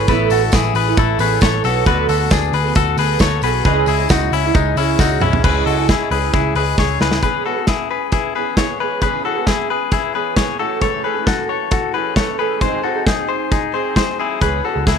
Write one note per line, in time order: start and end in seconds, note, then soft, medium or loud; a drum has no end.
0.08 0.27 A1 loud
0.08 0.42 A3 medium
0.08 0.42 B3 loud
0.08 0.43 E4 medium
0.08 0.32 E4 medium
0.08 0.42 A4 medium
0.08 0.31 B4 loud
0.08 0.40 C#5 medium
0.08 kick medium
0.08 closed hi-hat medium
0.08 tambourine soft
0.30 0.49 A1 loud
0.30 0.54 F#4 medium
0.30 0.53 A4 loud
0.30 open hi-hat medium
0.30 tambourine medium
0.41 0.87 E4 medium
0.41 0.86 A4 medium
0.41 0.84 C#5 medium
0.52 0.71 A1 loud
0.52 0.75 E4 medium
0.52 0.76 G#4 medium
0.52 kick loud
0.52 snare medium
0.52 closed hi-hat medium
0.52 tambourine loud
0.74 0.93 A1 loud
0.74 0.98 G#4 medium
0.74 0.98 B4 medium
0.74 open hi-hat medium
0.74 tambourine soft
0.85 1.18 E4 medium
0.85 1.20 A4 medium
0.85 1.19 C#5 medium
0.97 1.16 A1 loud
0.97 1.20 E4 medium
0.97 1.20 A4 medium
0.97 kick loud
0.97 closed hi-hat medium
0.97 tambourine medium
1.18 1.38 A1 medium
1.18 1.39 B3 medium
1.18 1.41 E4 medium
1.18 1.43 G#4 medium
1.18 1.42 A4 medium
1.18 1.42 B4 medium
1.18 1.43 C#5 medium
1.18 open hi-hat medium
1.18 tambourine medium
1.40 1.60 A1 medium
1.40 1.63 B3 medium
1.40 1.64 E4 medium
1.40 1.65 A4 medium
1.40 1.64 A4 medium
1.40 1.64 C#5 medium
1.40 1.66 C#5 medium
1.40 kick loud
1.40 snare loud
1.40 closed hi-hat medium
1.40 tambourine loud
1.64 1.83 B1 medium
1.64 1.85 B3 medium
1.64 1.87 E4 medium
1.64 1.86 F#4 medium
1.64 1.86 A4 medium
1.64 1.87 A4 medium
1.64 1.88 C#5 medium
1.64 open hi-hat medium
1.64 tambourine medium
1.86 2.05 D2 loud
1.86 2.20 D3 medium
1.86 2.20 F#3 medium
1.86 2.20 B3 loud
1.86 2.20 F#4 medium
1.86 2.09 F#4 medium
1.86 2.18 A4 loud
1.86 2.09 B4 loud
1.86 kick loud
1.86 closed hi-hat medium
2.09 2.27 D2 loud
2.09 2.31 F#4 medium
2.09 2.32 A4 medium
2.09 open hi-hat medium
2.09 tambourine medium
2.19 2.66 B3 soft
2.19 2.64 F#4 medium
2.19 2.62 A4 medium
2.30 2.50 D2 loud
2.30 2.54 D4 medium
2.30 2.54 G#4 medium
2.30 kick loud
2.30 snare medium
2.30 closed hi-hat medium
2.30 tambourine medium
2.52 2.71 D2 medium
2.52 2.77 G#4 medium
2.52 2.76 B4 medium
2.52 open hi-hat medium
2.52 tambourine soft
2.63 2.97 B3 medium
2.63 2.99 F#4 medium
2.63 2.98 A4 medium
2.75 2.94 D2 loud
2.75 2.99 F#4 medium
2.75 2.98 A4 medium
2.75 kick loud
2.75 closed hi-hat medium
2.75 tambourine medium
2.97 3.16 D2 loud
2.97 3.18 F#3 medium
2.97 3.20 B3 medium
2.97 3.21 F#4 medium
2.97 3.21 G#4 medium
2.97 3.22 A4 medium
2.97 3.21 B4 medium
2.97 open hi-hat medium
2.97 tambourine medium
3.19 3.39 D2 medium
3.19 3.40 F#3 medium
3.19 3.41 B3 medium
3.19 3.43 F#4 medium
3.19 3.44 A4 medium
3.19 3.43 C#5 medium
3.19 kick loud
3.19 snare loud
3.19 closed hi-hat medium
3.19 tambourine loud
3.41 3.61 B1 medium
3.41 3.65 F#3 medium
3.41 3.65 B3 medium
3.41 3.66 F#4 medium
3.41 3.65 G#4 medium
3.41 3.66 A4 medium
3.41 3.64 B4 medium
3.41 open hi-hat medium
3.41 tambourine soft
3.65 3.84 C#2 loud
3.65 3.99 C#3 medium
3.65 3.99 G#3 medium
3.65 3.99 C#4 medium
3.65 3.99 E4 medium
3.65 3.87 G#4 medium
3.65 3.98 G#4 medium
3.65 3.88 B4 medium
3.65 3.97 D#5 loud
3.65 kick loud
3.65 closed hi-hat medium
3.86 4.06 C#2 loud
3.86 4.11 E4 medium
3.86 4.10 G#4 medium
3.86 open hi-hat medium
3.86 tambourine medium
3.98 4.46 C#4 medium
3.98 4.45 E4 soft
3.98 4.44 G#4 medium
3.98 4.43 D#5 medium
4.09 4.28 C#2 loud
4.09 4.33 D#4 medium
4.09 4.32 F#4 medium
4.09 kick loud
4.09 snare medium
4.09 closed hi-hat medium
4.09 tambourine medium
4.31 4.50 C#2 medium
4.31 4.54 C#4 medium
4.31 4.55 E4 medium
4.31 open hi-hat medium
4.31 tambourine soft
4.44 4.75 C#4 medium
4.44 4.77 E4 medium
4.44 4.78 G#4 medium
4.44 4.77 D#5 medium
4.55 4.73 C#2 loud
4.55 4.77 G#3 medium
4.55 4.77 D#4 medium
4.55 kick loud
4.55 closed hi-hat medium
4.55 tambourine medium
4.76 4.95 C#2 medium
4.76 4.97 C#4 medium
4.76 5.00 C#4 medium
4.76 5.00 E4 medium
4.76 4.99 E4 medium
4.76 5.00 G#4 medium
4.76 open hi-hat medium
4.76 tambourine medium
4.80 5.01 D#5 medium
4.99 5.17 C#2 medium
4.99 5.20 C#4 medium
4.99 5.22 D#4 medium
4.99 5.22 E4 medium
4.99 5.22 F#4 medium
4.99 5.23 G#4 medium
4.99 5.23 D#5 medium
4.99 kick loud
4.99 snare medium
4.99 tambourine loud
5.20 5.39 B1 medium
5.20 5.44 C#4 medium
5.20 5.44 E4 medium
5.20 5.45 E4 medium
5.20 5.45 G#4 medium
5.20 mid tom medium
5.20 tambourine soft
5.25 5.46 D#5 medium
5.33 floor tom loud
5.44 5.62 C#2 loud
5.44 5.78 C#3 medium
5.44 5.78 G#3 medium
5.44 5.78 C#4 medium
5.44 5.78 E4 medium
5.44 5.67 G#4 medium
5.44 5.77 G#4 medium
5.44 5.66 B4 loud
5.44 5.76 D#5 medium
5.44 kick loud
5.44 crash medium
5.66 5.94 C#2 medium
5.66 5.89 F#4 medium
5.66 5.89 A4 medium
5.66 open hi-hat medium
5.77 6.10 C#4 soft
5.77 6.11 E4 soft
5.77 6.11 G#4 medium
5.77 6.11 D#5 medium
5.89 6.11 E4 medium
5.89 6.11 G#4 medium
5.89 kick loud
5.89 snare medium
5.89 closed hi-hat medium
6.11 6.29 C#2 loud
6.11 6.55 C#4 medium
6.11 6.56 E4 medium
6.11 6.32 G#4 medium
6.11 6.58 G#4 medium
6.11 6.34 B4 medium
6.11 6.57 D#5 medium
6.11 open hi-hat medium
6.33 6.52 C#2 loud
6.33 6.56 E4 medium
6.33 6.56 G#4 medium
6.33 kick loud
6.33 closed hi-hat medium
6.55 6.73 C#2 medium
6.55 6.76 C#4 medium
6.55 6.78 E4 medium
6.55 6.79 G#4 medium
6.55 6.78 B4 medium
6.55 open hi-hat medium
6.59 6.80 D#5 medium
6.78 6.96 C#2 medium
6.78 7.23 C#4 medium
6.78 7.24 E4 medium
6.78 7.01 G#4 medium
6.78 7.25 G#4 medium
6.78 7.01 C#5 medium
6.78 7.24 D#5 medium
6.78 kick loud
6.78 snare medium
7.00 7.19 C#2 medium
7.00 7.23 G#4 medium
7.00 7.22 B4 medium
7.00 snare medium
7.11 snare medium
7.22 7.45 C#3 medium
7.22 7.43 E3 medium
7.22 7.44 B3 medium
7.22 7.46 C#4 medium
7.22 7.46 G#4 medium
7.22 7.45 B4 medium
7.22 kick medium
7.22 closed hi-hat medium
7.44 7.56 E3 medium
7.44 7.57 B3 medium
7.44 7.57 C#4 medium
7.44 7.67 F#4 soft
7.44 7.54 G#4 medium
7.44 7.68 A4 medium
7.56 8.35 B3 soft
7.56 8.37 C#4 soft
7.56 8.35 G#4 soft
7.67 7.90 E4 medium
7.67 7.90 G#4 medium
7.67 kick medium
7.67 snare medium
7.67 closed hi-hat medium
7.91 8.11 G#4 soft
7.91 8.13 B4 medium
8.12 8.35 E4 medium
8.12 8.34 G#4 medium
8.12 kick loud
8.12 closed hi-hat medium
8.35 8.56 E3 medium
8.35 8.57 B3 medium
8.35 8.57 C#4 medium
8.35 8.57 G#4 medium
8.35 8.59 G#4 medium
8.35 8.57 B4 medium
8.57 8.78 E3 medium
8.57 8.79 B3 soft
8.57 8.80 C#4 medium
8.57 8.80 G#4 soft
8.57 8.81 G#4 medium
8.57 8.80 C#5 medium
8.57 kick medium
8.57 snare loud
8.57 closed hi-hat medium
8.79 9.02 E3 medium
8.79 9.02 B3 medium
8.79 9.03 C#4 medium
8.79 9.02 G#4 medium
8.79 9.03 G#4 medium
8.79 9.01 B4 medium
9.02 9.25 C#3 medium
9.02 9.22 E3 medium
9.02 9.23 B3 medium
9.02 9.24 C#4 medium
9.02 9.25 G#4 medium
9.02 9.25 B4 medium
9.02 kick medium
9.02 closed hi-hat medium
9.23 9.35 E3 medium
9.23 9.36 B3 medium
9.23 9.35 C#4 medium
9.23 9.48 F#4 medium
9.23 9.34 G#4 medium
9.23 9.47 A4 medium
9.35 10.13 B3 soft
9.35 10.15 C#4 soft
9.35 10.14 G#4 medium
9.47 9.70 E4 soft
9.47 9.70 G#4 medium
9.47 kick medium
9.47 snare medium
9.47 closed hi-hat medium
9.70 9.91 G#4 soft
9.70 9.92 B4 medium
9.92 10.15 E4 medium
9.92 10.15 G#4 medium
9.92 kick medium
9.92 closed hi-hat medium
10.13 10.35 E3 medium
10.13 10.36 B3 medium
10.13 10.37 C#4 medium
10.13 10.37 G#4 medium
10.13 10.38 G#4 medium
10.13 10.37 B4 medium
10.36 10.57 E3 soft
10.36 10.59 B3 medium
10.36 10.60 C#4 medium
10.36 10.60 G#4 medium
10.36 10.61 G#4 medium
10.36 10.59 C#5 medium
10.36 kick medium
10.36 snare medium
10.36 closed hi-hat medium
10.58 10.81 E3 medium
10.58 10.81 A3 medium
10.58 10.81 C#4 medium
10.58 10.82 F#4 medium
10.58 10.82 A4 medium
10.81 11.04 F#2 medium
10.81 11.04 C#3 medium
10.81 11.02 E3 medium
10.81 11.03 A3 medium
10.81 11.04 C#4 medium
10.81 11.05 A4 medium
10.81 11.04 C#5 medium
10.81 kick medium
10.81 closed hi-hat medium
11.03 11.15 E3 medium
11.03 11.15 A3 medium
11.03 11.14 C#4 medium
11.03 11.26 G#4 medium
11.03 11.13 A4 medium
11.03 11.27 B4 medium
11.14 11.92 E3 soft
11.14 11.93 A3 soft
11.14 11.94 C#4 soft
11.14 11.93 A4 soft
11.27 11.50 F#4 medium
11.27 11.49 A4 medium
11.27 kick loud
11.27 snare medium
11.27 closed hi-hat medium
11.49 11.71 A4 soft
11.49 11.72 C#5 medium
11.71 11.95 F#4 medium
11.71 11.94 A4 medium
11.71 kick loud
11.71 closed hi-hat medium
11.93 12.14 E3 medium
11.93 12.15 A3 soft
11.93 12.16 C#4 medium
11.93 12.17 G#4 soft
11.93 12.17 A4 medium
11.93 12.16 B4 medium
12.15 12.36 E3 medium
12.15 12.38 A3 medium
12.15 12.39 C#4 medium
12.15 12.39 A4 soft
12.15 12.40 A4 medium
12.15 12.38 C#5 medium
12.15 kick medium
12.15 snare loud
12.15 closed hi-hat medium
12.38 12.60 E3 medium
12.38 12.61 A3 medium
12.38 12.61 C#4 medium
12.38 12.61 G#4 medium
12.38 12.62 A4 medium
12.38 12.61 B4 medium
12.60 12.83 G#2 medium
12.60 12.84 D#3 medium
12.60 12.81 F#3 medium
12.60 12.82 C4 medium
12.60 12.84 D#4 medium
12.60 12.84 G#4 medium
12.60 12.83 G#4 medium
12.60 12.84 C5 medium
12.60 kick medium
12.60 closed hi-hat medium
12.82 12.94 F#3 soft
12.82 12.95 C4 medium
12.82 12.94 D#4 medium
12.82 13.07 F#4 medium
12.82 12.93 G#4 medium
12.82 13.06 A4 medium
12.94 13.71 F#3 soft
12.94 13.72 C4 soft
12.94 13.73 D#4 medium
12.94 13.75 G#4 soft
13.07 13.29 D#4 medium
13.07 13.28 G#4 medium
13.07 kick loud
13.07 snare medium
13.07 closed hi-hat medium
13.29 13.50 G#4 medium
13.29 13.51 C5 medium
13.51 13.74 D#4 medium
13.51 13.73 G#4 medium
13.51 kick loud
13.51 closed hi-hat medium
13.72 13.94 F#3 medium
13.72 13.95 C4 medium
13.72 13.96 D#4 medium
13.72 13.97 G#4 soft
13.72 13.97 G#4 medium
13.72 13.95 C5 medium
13.95 14.16 F#3 medium
13.95 14.17 C4 medium
13.95 14.18 D#4 medium
13.95 14.18 G#4 medium
13.95 14.19 G#4 medium
13.95 14.19 C5 medium
13.95 kick medium
13.95 snare medium
13.95 closed hi-hat medium
14.17 14.40 F#3 medium
14.17 14.41 C4 medium
14.17 14.41 D#4 medium
14.17 14.41 E4 medium
14.17 14.41 G#4 medium
14.40 14.60 C#2 medium
14.40 14.63 C#3 medium
14.40 14.61 E3 medium
14.40 14.63 B3 medium
14.40 14.64 C#4 medium
14.40 14.64 G#4 medium
14.40 14.64 B4 medium
14.40 kick medium
14.40 closed hi-hat medium
14.63 14.74 E3 medium
14.63 14.75 B3 medium
14.63 14.74 C#4 medium
14.63 14.87 F#4 soft
14.63 14.72 G#4 medium
14.63 14.87 A4 medium
14.73 14.84 C#2 medium
14.73 14.98 B3 soft
14.73 14.98 C#4 soft
14.73 14.98 G#4 soft
14.87 14.98 C#2 medium
14.87 14.98 E4 medium
14.87 14.98 G#4 medium
14.87 kick medium
14.87 snare medium
14.87 closed hi-hat medium